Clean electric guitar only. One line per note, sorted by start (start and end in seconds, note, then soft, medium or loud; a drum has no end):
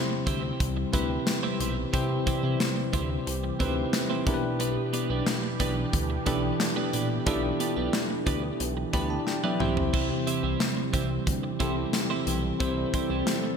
0.10 muted clean electric guitar stroke soft
0.26 0.47 C4 medium
0.26 0.43 E4 medium
0.26 0.42 G4 medium
0.26 0.42 C5 medium
0.43 muted clean electric guitar stroke soft
0.60 muted clean electric guitar stroke soft
0.77 muted clean electric guitar stroke soft
0.93 1.14 C4 medium
0.93 1.09 E4 medium
0.93 1.09 G4 medium
0.93 1.09 C5 medium
1.10 muted clean electric guitar stroke soft
1.27 muted clean electric guitar stroke soft
1.43 1.59 C4 medium
1.43 1.59 E4 medium
1.43 1.59 G4 medium
1.43 1.60 C5 medium
1.60 1.76 C4 medium
1.60 1.76 E4 medium
1.60 1.76 G4 medium
1.60 1.75 C5 medium
1.77 muted clean electric guitar stroke soft
1.93 2.14 C4 medium
1.93 2.10 E4 medium
1.93 2.09 G4 medium
1.93 2.09 C5 medium
2.10 muted clean electric guitar stroke soft
2.26 2.43 C4 medium
2.26 2.43 E4 medium
2.26 2.42 G4 medium
2.26 2.42 C5 medium
2.43 2.60 C4 soft
2.43 2.60 E4 medium
2.43 2.60 G4 medium
2.43 2.59 C5 medium
2.77 muted clean electric guitar stroke soft
2.93 3.14 C4 medium
2.93 3.10 E4 medium
2.93 3.10 G4 medium
2.93 3.09 C5 medium
3.10 muted clean electric guitar stroke soft
3.27 muted clean electric guitar stroke soft
3.44 muted clean electric guitar stroke soft
3.60 3.81 C4 medium
3.60 3.76 E4 medium
3.60 3.76 G4 medium
3.60 3.75 C5 medium
3.77 muted clean electric guitar stroke medium
3.93 muted clean electric guitar stroke soft
4.10 4.26 C4 medium
4.10 4.26 E4 medium
4.10 4.26 G4 medium
4.10 4.27 C5 medium
4.26 4.43 B3 medium
4.26 4.43 D4 medium
4.26 4.42 G4 medium
4.26 4.42 B4 medium
4.43 muted clean electric guitar stroke soft
4.60 4.81 B3 medium
4.60 4.76 D4 medium
4.60 4.76 G4 medium
4.60 4.75 B4 medium
4.76 muted clean electric guitar stroke soft
4.93 5.09 B3 medium
4.93 5.10 D4 medium
4.93 5.09 G4 medium
4.93 5.09 B4 medium
5.10 5.27 B3 soft
5.10 5.27 D4 medium
5.10 5.26 G4 medium
5.10 5.26 B4 medium
5.43 muted clean electric guitar stroke soft
5.60 5.81 B3 medium
5.60 5.76 D4 medium
5.60 5.76 G4 medium
5.60 5.75 B4 medium
5.76 muted clean electric guitar stroke soft
5.93 muted clean electric guitar stroke soft
6.10 muted clean electric guitar stroke soft
6.26 6.47 B3 medium
6.26 6.43 D4 medium
6.26 6.43 G4 medium
6.26 6.42 B4 medium
6.43 muted clean electric guitar stroke soft
6.60 muted clean electric guitar stroke soft
6.76 6.92 B3 medium
6.76 6.92 D4 medium
6.76 6.93 G4 medium
6.76 6.93 B4 medium
6.93 7.09 B3 medium
6.93 7.10 D4 medium
6.93 7.09 G4 medium
6.93 7.09 B4 medium
7.10 muted clean electric guitar stroke soft
7.26 7.47 B3 medium
7.26 7.43 D4 medium
7.26 7.43 G4 medium
7.26 7.42 B4 medium
7.43 muted clean electric guitar stroke soft
7.60 7.76 B3 medium
7.60 7.76 D4 medium
7.60 7.76 G4 medium
7.60 7.75 B4 medium
7.76 7.93 B3 soft
7.76 7.93 D4 soft
7.76 7.93 G4 medium
7.76 7.93 B4 medium
8.10 muted clean electric guitar stroke soft
8.26 8.47 B3 medium
8.26 8.43 D4 medium
8.26 8.43 G4 medium
8.26 8.42 B4 medium
8.43 muted clean electric guitar stroke soft
8.60 muted clean electric guitar stroke soft
8.77 muted clean electric guitar stroke soft
8.93 9.14 B3 medium
8.93 9.10 D4 medium
8.93 9.10 G4 medium
8.93 9.09 B4 medium
9.10 muted clean electric guitar stroke soft
9.27 muted clean electric guitar stroke soft
9.44 9.60 B3 medium
9.44 9.60 D4 medium
9.44 9.60 G4 medium
9.44 9.61 B4 medium
9.60 9.77 C4 medium
9.60 9.77 E4 medium
9.60 9.76 G4 medium
9.60 9.76 C5 medium
9.77 muted clean electric guitar stroke soft
9.93 10.14 C4 medium
9.93 10.10 E4 medium
9.93 10.09 G4 medium
9.93 10.09 C5 medium
10.10 muted clean electric guitar stroke soft
10.27 10.43 C4 medium
10.27 10.43 E4 medium
10.27 10.42 G4 medium
10.27 10.42 C5 medium
10.43 10.60 C4 soft
10.43 10.60 E4 soft
10.43 10.60 G4 medium
10.43 10.59 C5 medium
10.77 muted clean electric guitar stroke soft
10.93 11.14 C4 medium
10.93 11.10 E4 medium
10.93 11.09 G4 medium
10.93 11.09 C5 medium
11.10 muted clean electric guitar stroke soft
11.27 muted clean electric guitar stroke soft
11.43 muted clean electric guitar stroke soft
11.60 11.81 C4 medium
11.60 11.76 E4 medium
11.60 11.76 G4 medium
11.60 11.76 C5 medium
11.77 muted clean electric guitar stroke soft
11.93 muted clean electric guitar stroke soft
12.10 12.26 C4 medium
12.10 12.26 E4 medium
12.10 12.27 G4 medium
12.10 12.27 C5 medium
12.27 12.43 C4 medium
12.27 12.43 E4 medium
12.27 12.43 G4 medium
12.27 12.42 C5 medium
12.44 muted clean electric guitar stroke soft
12.60 12.81 C4 medium
12.60 12.76 E4 medium
12.60 12.76 G4 medium
12.60 12.76 C5 medium
12.77 muted clean electric guitar stroke soft
12.94 13.10 C4 medium
12.94 13.10 E4 medium
12.94 13.10 G4 medium
12.94 13.09 C5 medium
13.10 13.27 C4 soft
13.10 13.27 E4 medium
13.10 13.27 G4 medium
13.10 13.26 C5 medium
13.44 muted clean electric guitar stroke soft